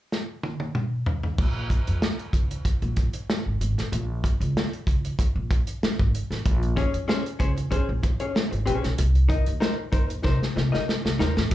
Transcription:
0.12 snare
0.43 high tom
0.60 high tom
0.75 mid tom
1.06 floor tom
1.23 floor tom
1.38 upright bass A#1, kick, crash
1.70 kick, closed hi-hat
1.87 upright bass F2, closed hi-hat
2.02 snare
2.19 closed hi-hat
2.33 upright bass C#2, kick, closed hi-hat
2.51 closed hi-hat
2.65 muted upright bass stroke, kick, closed hi-hat
2.82 upright bass A#1, closed hi-hat
2.96 kick, closed hi-hat
3.13 closed hi-hat
3.30 snare
3.46 upright bass G#1
3.61 upright bass G#1, closed hi-hat
3.78 upright bass A1, snare, closed hi-hat
3.92 upright bass A#1, closed hi-hat
4.24 kick, closed hi-hat
4.40 upright bass C#2, closed hi-hat
4.57 snare
4.73 closed hi-hat
4.87 upright bass C#2, kick, closed hi-hat
5.05 closed hi-hat
5.19 muted upright bass stroke, kick, closed hi-hat
5.35 upright bass A#1
5.50 kick, closed hi-hat
5.67 closed hi-hat
5.83 muted upright bass stroke, snare
5.99 upright bass G#1, kick
6.14 closed hi-hat
6.31 upright bass A1, snare, closed hi-hat
6.45 upright bass A#1, kick, closed hi-hat
6.63 closed hi-hat
6.76 hollow-body jazz guitar C#4 G#4 C#5, kick, closed hi-hat
6.93 upright bass F2, closed hi-hat
7.08 hollow-body jazz guitar C#4 G#4 C5, snare
7.25 muted hollow-body jazz guitar stroke, closed hi-hat
7.39 upright bass C#2, hollow-body jazz guitar C#4 G#4 C5, kick, closed hi-hat
7.57 muted hollow-body jazz guitar stroke, closed hi-hat
7.71 hollow-body jazz guitar C#4 G#4 C5, muted upright bass stroke, kick, closed hi-hat
7.89 upright bass A#1
8.03 muted hollow-body jazz guitar stroke, kick, closed hi-hat
8.20 hollow-body jazz guitar C#4 G#4 C#5, closed hi-hat
8.35 muted hollow-body jazz guitar stroke, snare
8.51 upright bass G#1, muted hollow-body jazz guitar stroke, closed hi-hat
8.66 upright bass A#1, hollow-body jazz guitar C#4 G#4 C5, closed hi-hat
8.82 upright bass B1, muted hollow-body jazz guitar stroke, snare, closed hi-hat
8.98 upright bass C2, closed hi-hat
9.15 closed hi-hat
9.29 hollow-body jazz guitar D#4 A#4 D#5, kick, closed hi-hat
9.46 upright bass D#2, closed hi-hat
9.60 hollow-body jazz guitar D#4 A#4 C5, snare
9.77 muted hollow-body jazz guitar stroke
9.92 upright bass D#2, hollow-body jazz guitar D#4 A#4 C5, kick, closed hi-hat
10.08 muted hollow-body jazz guitar stroke, closed hi-hat
10.23 upright bass C3, hollow-body jazz guitar D#4 A#4 C5, kick, snare
10.43 snare
10.56 upright bass C3, muted hollow-body jazz guitar stroke, snare
10.72 upright bass C2, hollow-body jazz guitar D#4 A#4 D#5, snare
10.87 muted hollow-body jazz guitar stroke, snare
11.05 upright bass C2, muted hollow-body jazz guitar stroke, snare
11.19 upright bass D#2, hollow-body jazz guitar D#4 A#4 C5, snare
11.36 upright bass A1, muted hollow-body jazz guitar stroke, snare
11.51 upright bass A#1, kick, crash

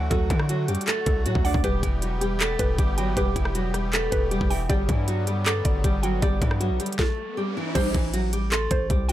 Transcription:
Already playing: accordion D3 F#3 A3 F#4, synth pluck F#5 A6
0.11 808-style bass D2, nylon-string guitar F#3 F#4, synth pluck A4, kick, closed hi-hat
0.30 808-style bass D3, nylon-string guitar E3 E4, kick, closed hi-hat
0.40 cross-stick
0.49 nylon-string guitar F#3 F#4, closed hi-hat
0.68 808-style bass F#2, nylon-string guitar G3 G4, closed hi-hat
0.75 closed hi-hat
0.81 closed hi-hat
0.87 nylon-string guitar A3 A4, synth pluck A6, clap, closed hi-hat
1.06 808-style bass C2, synth pluck A4, kick, closed hi-hat
1.26 808-style bass A2, nylon-string guitar F#3 F#4, closed hi-hat
1.35 808-style bass D2, kick
1.45 nylon-string guitar D4 D5, synth pluck F#5, open hi-hat
1.54 808-style bass D2, kick
1.64 808-style bass E1, accordion E3 G3 B3 G4, nylon-string guitar G3 G4, synth pluck B4, kick, closed hi-hat
1.83 808-style bass E1, nylon-string guitar E3 E4, kick, closed hi-hat
2.02 nylon-string guitar F#3 F#4, closed hi-hat
2.21 nylon-string guitar G3 G4, closed hi-hat
2.40 nylon-string guitar A3 A4, synth pluck B6, clap, closed hi-hat
2.59 808-style bass E1, synth pluck B4, kick, closed hi-hat
2.79 808-style bass G1, nylon-string guitar G3 G4, kick, closed hi-hat
2.98 nylon-string guitar F#3 F#4, synth pluck G5, closed hi-hat
3.17 808-style bass E1, nylon-string guitar G3 G4, synth pluck B4, kick, closed hi-hat
3.36 808-style bass E1, nylon-string guitar E3 E4, kick, closed hi-hat
3.45 cross-stick
3.55 nylon-string guitar F#3 F#4, closed hi-hat
3.74 nylon-string guitar G3 G4, cross-stick, closed hi-hat
3.93 nylon-string guitar A3 A4, synth pluck B6, clap, closed hi-hat
4.12 808-style bass E1, synth pluck B4, kick, closed hi-hat
4.31 nylon-string guitar G3 G4, closed hi-hat
4.41 808-style bass E1, kick
4.50 nylon-string guitar E3 E4, synth pluck G5, open hi-hat
4.69 808-style bass G1, accordion D3 F#3 G3, nylon-string guitar G3 G4, synth pluck D5, kick, closed hi-hat
4.89 808-style bass G2, nylon-string guitar E3 E4, kick, closed hi-hat
5.08 nylon-string guitar F#3 F#4, closed hi-hat
5.27 nylon-string guitar G3 G4, closed hi-hat
5.46 nylon-string guitar A3 A4, synth pluck D6, clap, closed hi-hat
5.65 808-style bass G1, synth pluck D5, kick, closed hi-hat
5.84 808-style bass G1, nylon-string guitar G3 G4, kick, closed hi-hat
6.03 nylon-string guitar F#3 F#4, synth pluck G5, closed hi-hat
6.22 808-style bass G1, nylon-string guitar G3 G4, synth pluck D5, kick, closed hi-hat, riser
6.42 808-style bass G2, nylon-string guitar E3 E4, kick, closed hi-hat
6.51 cross-stick
6.60 nylon-string guitar F#3 F#4, closed hi-hat
6.70 808-style bass B1
6.80 nylon-string guitar G3 G4, closed hi-hat
6.86 closed hi-hat
6.93 closed hi-hat
6.99 nylon-string guitar A3 A4, kick, snare
7.37 nylon-string guitar G3 G4
7.57 nylon-string guitar E3 E4
7.75 808-style bass A1, nylon-string guitar G3 G4, synth pluck C5, kick, closed hi-hat, crash
7.94 808-style bass A1, nylon-string guitar E3 E4, kick, closed hi-hat
8.14 nylon-string guitar F#3 F#4, closed hi-hat
8.33 nylon-string guitar G3 G4, closed hi-hat
8.52 nylon-string guitar A3 A4, synth pluck C6, clap, closed hi-hat
8.71 808-style bass A1, synth pluck C5, kick, closed hi-hat
8.90 808-style bass C2, nylon-string guitar G3 G4, kick, closed hi-hat
9.09 nylon-string guitar F#4, synth pluck G5, closed hi-hat

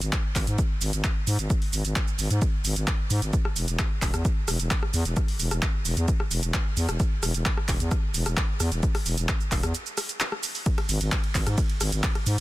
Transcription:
0.02 fm bass G#1, closed hi-hat, shaker
0.13 kick, clap, closed hi-hat, shaker
0.36 fm bass G#1, kick, clap, open hi-hat, shaker
0.47 fm bass G#2, closed hi-hat, shaker
0.58 kick, closed hi-hat, shaker
0.81 fm bass G#1, open hi-hat, shaker
0.93 fm bass G#1, closed hi-hat, shaker
1.04 kick, clap, closed hi-hat, shaker
1.27 fm bass G#2, open hi-hat, shaker
1.39 fm bass G#1, closed hi-hat, shaker
1.50 kick, closed hi-hat, shaker
1.62 open hi-hat
1.73 fm bass G#1, open hi-hat, shaker
1.85 fm bass G#1, closed hi-hat, shaker
1.96 kick, clap, closed hi-hat, shaker
2.08 shaker
2.19 fm bass G#1, open hi-hat, shaker
2.31 fm bass G#2, closed hi-hat, shaker
2.42 kick, closed hi-hat, shaker
2.65 fm bass G#1, open hi-hat, shaker
2.76 fm bass G#1, closed hi-hat, shaker
2.88 kick, clap, closed hi-hat, shaker
3.10 fm bass G#2, open hi-hat, shaker
3.22 fm bass G#1, closed hi-hat, shaker
3.33 kick, closed hi-hat, shaker
3.45 cross-stick
3.56 fm bass E1, open hi-hat, shaker
3.68 fm bass E1, closed hi-hat, shaker
3.79 kick, cross-stick, clap, closed hi-hat, shaker
4.02 fm bass E1, kick, clap, open hi-hat, shaker
4.14 fm bass E2, cross-stick, closed hi-hat, shaker
4.25 kick, closed hi-hat, shaker
4.48 fm bass E1, cross-stick, open hi-hat, shaker
4.60 fm bass E1, closed hi-hat, shaker
4.71 kick, clap, closed hi-hat, shaker
4.83 cross-stick
4.94 fm bass E2, open hi-hat, shaker
5.05 fm bass E1, closed hi-hat, shaker
5.17 kick, cross-stick, closed hi-hat, shaker
5.28 open hi-hat
5.40 fm bass E1, open hi-hat, shaker
5.51 fm bass E1, cross-stick, closed hi-hat, shaker
5.62 kick, clap, closed hi-hat, shaker
5.85 fm bass E1, open hi-hat, shaker
5.97 fm bass E2, closed hi-hat, shaker
6.08 kick, closed hi-hat, shaker
6.20 cross-stick
6.31 fm bass E1, open hi-hat, shaker
6.43 fm bass E1, closed hi-hat, shaker
6.54 kick, cross-stick, clap, closed hi-hat, shaker
6.77 fm bass E2, open hi-hat, shaker
6.89 fm bass E1, cross-stick, closed hi-hat, shaker
7.00 kick, closed hi-hat, shaker
7.23 fm bass E1, cross-stick, open hi-hat, shaker
7.34 fm bass E1, closed hi-hat, shaker
7.46 kick, clap, closed hi-hat, shaker
7.57 cross-stick
7.68 fm bass E1, kick, clap, open hi-hat, shaker
7.80 fm bass E2, closed hi-hat, shaker
7.91 kick, cross-stick, closed hi-hat, shaker
8.14 fm bass E1, open hi-hat, shaker
8.26 fm bass E1, cross-stick, closed hi-hat, shaker
8.37 kick, clap, closed hi-hat, shaker
8.60 fm bass E2, cross-stick, open hi-hat, shaker
8.72 fm bass E1, closed hi-hat, shaker
8.83 kick, closed hi-hat, shaker
8.95 cross-stick, open hi-hat
9.06 fm bass E1, open hi-hat, shaker
9.18 fm bass E1, closed hi-hat, shaker
9.29 kick, cross-stick, clap, closed hi-hat, shaker
9.40 shaker
9.52 fm bass E1, kick, clap, open hi-hat, shaker
9.63 fm bass E2, cross-stick, closed hi-hat, shaker
9.75 closed hi-hat, shaker
9.86 shaker
9.97 cross-stick, open hi-hat, shaker
10.09 closed hi-hat, shaker
10.20 clap, closed hi-hat, shaker
10.32 cross-stick
10.43 open hi-hat, shaker
10.55 open hi-hat, shaker
10.66 kick, closed hi-hat, ride, shaker
10.78 cross-stick, ride
10.89 fm bass G#1, open hi-hat, ride, shaker
11.01 fm bass G#1, closed hi-hat, ride, shaker
11.12 kick, cross-stick, clap, closed hi-hat, ride, shaker
11.24 ride
11.35 fm bass G#1, kick, clap, open hi-hat, ride, shaker
11.47 fm bass G#2, cross-stick, closed hi-hat, ride, shaker
11.58 kick, closed hi-hat, ride, shaker
11.70 ride
11.81 fm bass G#1, cross-stick, open hi-hat, ride, shaker
11.92 fm bass G#1, closed hi-hat, ride, shaker
12.04 kick, clap, closed hi-hat, ride, shaker
12.15 cross-stick, ride
12.26 fm bass G#2, open hi-hat, ride, shaker

